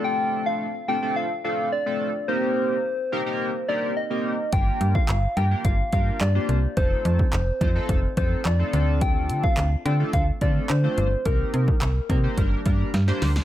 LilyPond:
<<
  \new Staff \with { instrumentName = "Soft synth lead" } { \time 4/4 \key g \minor \tempo 4 = 107 g''8. f''8. g''8 f''8 f''8 d''4 | c''2~ c''8 d''8 ees''4 | g''8. f''8. g''8 f''8 f''8 d''4 | c''2~ c''8 c''8 d''4 |
g''8. f''8. g''8 f''8 d''8 c''4 | bes'2.~ bes'8 r8 | }
  \new Staff \with { instrumentName = "Analog polysynth" } { \time 4/4 \key g \minor <a c' d' f' a'>4 r8 <a c' d' f' a'>16 <a c' d' f' a'>8 r16 <a c' d' f' a'>8 r16 <a c' d' f' a'>8 r16 | <bes c' ees' g' bes'>8. r8. <bes c' ees' g' bes'>16 <bes c' ees' g' bes'>8 r16 <bes c' ees' g' bes'>8 r16 <bes c' ees' g' bes'>8 r16 | <bes d' f' g' bes'>8. r8. <bes d' f' g' bes'>16 <bes d' f' g' bes'>8 r16 <bes d' f' g' bes'>8 r16 <bes d' f' g' c''>8 r16 | <a c' ees' f' a'>8. r8. <a c' ees' f' c''>16 <a c' ees' f' a'>8 r16 <a c' ees' f' a'>8 r16 <a c' ees' f' a'>16 <a c' d' f' a'>8~ |
<a c' d' f' a'>4 r8 <a c' d' f' a'>16 <a c' d' f' a'>8 r16 <a c' d' f' a'>8 r16 <a c' d' f' c''>8 r16 | <bes c' ees' g' bes'>8. r8. <bes c' ees' g' bes'>16 <bes c' ees' g' c''>16 <g bes d' g' bes'>8 <g bes d' g' bes'>8 r16 <g bes d' g' c''>8 r16 | }
  \new Staff \with { instrumentName = "FM bass" } { \clef bass \time 4/4 \key g \minor r1 | r1 | g,,8 g,8 g,,8 g,8 g,,8 g,8 g,8 c,8 | f,,8 f,8 f,,8 f,8 f,,8 f,8 f,8 d,8~ |
d,8 d8 d,8 d8 d,8 d8 d8 g,,8 | c,8 c8 c,8 c8 g,,8 g,8 g,8 d,8 | }
  \new DrumStaff \with { instrumentName = "Drums" } \drummode { \time 4/4 r4 r4 r4 r4 | r4 r4 r4 r4 | <hh bd>8 hh16 bd16 <hc hh>8 hh8 <hh bd>8 <hh bd>8 <hc hh>8 hh8 | <hh bd>8 hh16 bd16 <hc hh>8 <hh bd>8 <hh bd>8 <hh bd>8 <hc hh>8 hh8 |
<hh bd>8 hh16 bd16 <hc hh>8 hh8 <hh bd>8 <hh bd>8 <hc hh>8 hh8 | <hh bd>8 hh16 bd16 <hc hh>8 <hh bd>8 <hh bd>8 <hh bd>8 <hh sn>16 sn16 <hho sn>16 sn16 | }
>>